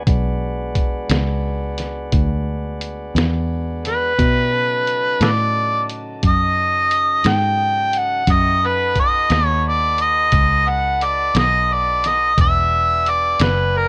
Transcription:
0.07 fingered electric bass B1, tonewheel organ G#3 B3 D4 F#4, kick, closed hi-hat
0.75 kick, closed hi-hat
1.09 fingered electric bass C#2, snare, closed hi-hat
1.78 snare, closed hi-hat
2.12 fingered electric bass D2, kick, closed hi-hat
2.81 closed hi-hat
3.15 fingered electric bass E2, snare, closed hi-hat
3.85 harmonica B4, snare, closed hi-hat
4.19 fingered electric bass B2, tonewheel organ D4 E4 G4 A#5, kick, closed hi-hat
4.52 tonewheel organ C#3 F#3 D#4 A4
4.87 closed hi-hat
5.21 fingered electric bass A2, harmonica A4 B4 D5, snare, closed hi-hat
5.89 closed hi-hat
6.23 fingered electric bass F#2, kick, closed hi-hat
6.27 harmonica D#5
6.91 closed hi-hat
7.24 fingered electric bass G#2, snare, closed hi-hat
7.29 harmonica G5
7.93 closed hi-hat
7.98 harmonica F#5
8.27 fingered electric bass F#2, tonewheel organ E4 G4 A#4 C#5, kick, closed hi-hat
8.32 harmonica D#5
8.61 tonewheel organ D#4 F#4 A4 B4
8.66 harmonica B4
8.96 kick, closed hi-hat
9.00 harmonica D#5
9.30 fingered electric bass D#2, snare, closed hi-hat
9.47 harmonica C#5
9.69 harmonica D5
9.98 harmonica D#5, closed hi-hat
10.32 fingered electric bass C#2, kick, closed hi-hat
10.69 harmonica F#5
11.01 harmonica D5, closed hi-hat
11.35 fingered electric bass B1, snare, closed hi-hat
11.39 harmonica D#5
11.73 harmonica D5
12.04 harmonica D#5, snare, closed hi-hat
12.37 fingered electric bass E1, tonewheel organ B3 D4 F#4 G#4, harmonica E5, kick, closed hi-hat
13.06 harmonica D5, closed hi-hat
13.40 fingered electric bass F#1, harmonica B4, snare, closed hi-hat
13.77 harmonica A#4

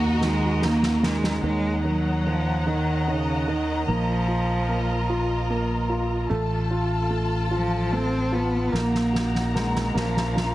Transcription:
Already playing: fingered electric bass D#2, grand piano D#3, cello A#3, violin section F#4, string section F#4 A#4 D#5 A#5
0.21 grand piano D#3, cello G#3, snare
0.62 grand piano D#3, cello A#3, snare
0.83 snare
1.03 grand piano D#3, cello G#3, snare
1.24 snare
1.42 fingered electric bass D#2, grand piano D#3, cello G#3, string section C#5 D#5 F#5 A#5
1.84 grand piano D#3, cello F#3
2.26 grand piano D#3, cello F3
2.67 grand piano D#3, cello D#3
3.08 cello C#3, grand piano D#3
3.48 grand piano D#3, cello D#3
3.87 fingered electric bass A#1, cello F3, grand piano A#3, string section F4 A#4
4.28 grand piano F4
4.69 grand piano A#3
5.09 grand piano F4
5.50 grand piano A#3
5.89 grand piano F4
6.29 fingered electric bass A1, grand piano A3, string section F4 A4 A5
6.71 grand piano F4
7.10 grand piano A3
7.51 cello F3, grand piano F4
7.92 grand piano A3, cello C4
8.32 cello B3, grand piano F4
8.72 fingered electric bass A#1, grand piano A#3, cello A#3, string section D#4 A#4 F#5 A#5, snare
8.95 snare
9.13 grand piano F#4, snare
9.35 snare
9.54 cello G#3, grand piano A#3, snare
9.76 snare
9.94 fingered electric bass A#1, cello F3, grand piano A#3, string section D4 F5, snare
10.17 snare
10.35 grand piano F4, snare

